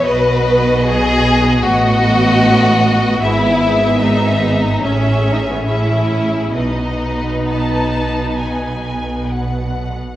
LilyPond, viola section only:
\new Staff \with { instrumentName = "Viola section" } { \time 4/4 \key b \mixolydian \tempo 4 = 71 <b fis'>2 <b fis'>2 | <b gis'>2 <cis' gis'>4 <cis' gis'>4 | <b b'>2.~ <b b'>8. r16 | }